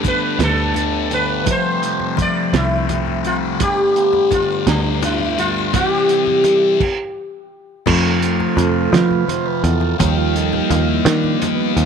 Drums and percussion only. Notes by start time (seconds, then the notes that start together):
0.03 kick, closed hi-hat, high conga
0.40 snare, closed hi-hat
0.74 closed hi-hat, high conga
1.09 closed hi-hat, low conga
1.46 kick, closed hi-hat, high conga
1.64 low conga
1.83 closed hi-hat
2.00 low conga
2.17 kick, closed hi-hat, high conga
2.54 snare, closed hi-hat
2.89 closed hi-hat, high conga
3.06 low conga
3.24 closed hi-hat, low conga
3.60 kick, closed hi-hat, high conga
3.78 low conga
3.96 closed hi-hat
4.13 low conga
4.31 kick, closed hi-hat, high conga
4.67 snare, closed hi-hat
5.02 closed hi-hat, high conga
5.20 low conga
5.38 closed hi-hat, low conga
5.73 kick, closed hi-hat, high conga
5.91 low conga
6.09 closed hi-hat
6.27 low conga
6.44 closed hi-hat, high conga
6.80 kick, crash
7.86 kick, crash, high conga
8.22 closed hi-hat
8.40 low conga
8.57 closed hi-hat, high conga
8.94 snare, closed hi-hat
9.11 low conga
9.28 closed hi-hat, high conga
9.64 closed hi-hat
9.81 low conga
9.99 kick, closed hi-hat, high conga
10.18 low conga
10.36 closed hi-hat
10.53 low conga
10.71 closed hi-hat, high conga
11.06 snare, closed hi-hat
11.24 low conga
11.42 closed hi-hat, high conga
11.77 closed hi-hat